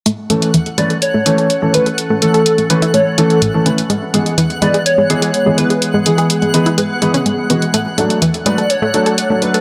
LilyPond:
<<
  \new Staff \with { instrumentName = "Synth texture" } { \time 4/4 \key a \major \tempo 4 = 125 <fis'' fis'''>1~ | <fis'' fis'''>1~ | <fis'' fis'''>1~ | <fis'' fis'''>1~ |
<fis'' fis'''>1 | }
  \new Staff \with { instrumentName = "Digital synth lead" } { \time 4/4 \key a \major r4. d''8 cis''4. b'8~ | b'8 a'4. cis''8 a'4 r8 | r4. d''8 cis''4. b'8~ | b'8 gis'4. b'8 gis'4 r8 |
r4. d''8 cis''4. b'8 | }
  \new Staff \with { instrumentName = "Ambient pad" } { \time 4/4 \key a \major << { <a cis' a'>1~ | <a cis' a'>1 | <gis b gis'>1~ | <gis b gis'>1 |
<a d' a'>1 | } \\ { e1~ | e1~ | e1~ | e1 |
fis1 | } >> }
  \new Staff \with { instrumentName = "Grand piano" } { \time 4/4 \key a \major r8 <e a cis' a'>16 r8. <e a cis' b'>16 r8. <e a cis' a'>16 r8 <e a cis' a'>16 <e a cis' b'>16 r16 | r8 <e a cis' a'>16 r8. <e a cis' b'>16 r8. <e a cis' a'>16 r8 <e a cis' a'>16 <e a cis' b'>16 r16 | r8 <e gis b gis'>16 r8. <e gis b b'>16 r8. <e gis b gis'>16 r8 <e gis b gis'>16 <e gis b b'>16 r16 | r8 <e gis b gis'>16 r8. <e gis b b'>16 r8. <e gis b b'>16 r8. <e gis b fis'>16 r16 |
r8 <fis a d' a'>16 r8. <fis a d' b'>16 r8. <fis a d' a'>16 r8 <fis a d' a'>16 <fis a d' b'>16 r16 | }
  \new Staff \with { instrumentName = "Synth arpeggio sound" } { \time 4/4 \key a \major a16 r16 a16 r16 e16 r16 gis16 a'16 r16 a16 r16 a'16 r16 a16 r16 a'16 | r16 a16 r16 a'16 r16 a16 r16 e'16 a16 r16 e'16 r16 a,16 r16 cis'16 r16 | gis16 r16 gis16 r16 e16 r16 gis16 gis'16 r16 gis16 r16 gis'16 r16 gis16 r16 gis'16 | r16 gis16 r16 gis'16 r16 gis16 r16 e'16 gis16 r16 gis16 cis'16 gis16 r16 b16 r16 |
a16 r16 a16 r16 e16 r16 gis16 a'16 r16 a16 r16 a'16 r16 a16 r16 a'16 | }
  \new DrumStaff \with { instrumentName = "Drums" } \drummode { \time 4/4 hh8 hh16 hh16 hh16 hh16 hh16 hh16 hh8 hh16 hh16 hh8 hh16 hh16 | hh8 hh16 hh16 hh16 hh16 hh16 hh16 hh8 hh16 hh16 hh8 hh16 hh16 | hh8 hh16 hh16 hh16 hh16 hh16 hh16 hh8 hh16 hh16 hh8 hh16 hh16 | hh8 hh16 hh16 hh16 hh16 hh16 hh16 hh8 hh16 hh16 hh8 hh16 hh16 |
hh8 hh16 hh16 hh16 hh16 hh16 hh16 hh8 hh16 hh16 hh8 hh16 hh16 | }
>>